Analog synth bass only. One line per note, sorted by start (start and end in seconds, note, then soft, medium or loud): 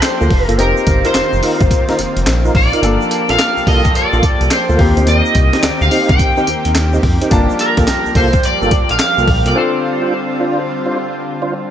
0.21 0.29 D2 medium
0.31 0.46 F1 loud
0.49 0.57 G1 loud
0.59 0.74 F1 loud
0.87 1.02 G1 loud
1.15 1.22 F1 soft
1.33 1.41 F1 medium
1.61 1.69 G1 medium
1.99 2.06 F1 soft
2.17 2.25 F1 medium
2.27 2.50 A#1 loud
2.55 2.70 A#1 loud
2.83 2.98 G1 loud
3.29 3.37 A#1 medium
3.57 3.61 C2 soft
3.67 3.82 C2 loud
4.13 4.21 A#1 loud
4.41 4.49 C2 medium
4.69 4.78 D2 medium
4.79 4.94 D#2 loud
4.97 5.05 D2 loud
5.07 5.22 D#2 loud
5.35 5.50 C2 medium
5.63 5.70 D2 soft
5.81 5.90 D2 loud
6.09 6.18 C2 medium
6.47 6.55 D#2 medium
6.65 6.74 D#2 loud
6.76 6.99 D#2 loud
7.03 7.18 F2 medium
7.31 7.46 G1 loud
7.77 7.86 A#1 medium
8.06 8.10 C2 medium
8.15 8.30 C2 loud
8.62 8.70 G1 loud
8.90 8.98 A#1 medium
9.18 9.26 C2 medium
9.28 9.43 A#1 loud
9.46 9.54 C2 medium